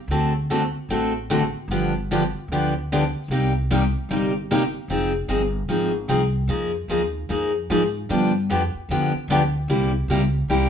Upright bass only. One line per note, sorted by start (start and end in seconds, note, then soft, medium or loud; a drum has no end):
0.08 0.73 D2 medium
0.89 1.53 A1 medium
1.68 2.33 G1 medium
2.48 3.13 D2 medium
3.28 3.93 C2 medium
4.09 4.73 G1 medium
4.88 5.28 F1 medium
5.28 5.68 G1 medium
5.68 6.07 G#1 medium
6.08 6.47 C2 medium
6.47 6.87 F2 medium
6.88 7.27 D#2 medium
7.29 7.68 F2 medium
7.70 8.08 G#2 medium
8.10 8.48 G2 medium
8.50 8.73 F2 medium
8.75 muted upright bass stroke soft
8.89 9.12 E2 medium
9.14 muted upright bass stroke soft
9.28 9.67 D2 medium
9.68 10.07 C2 medium
10.08 10.47 C#2 medium
10.48 10.69 C2 medium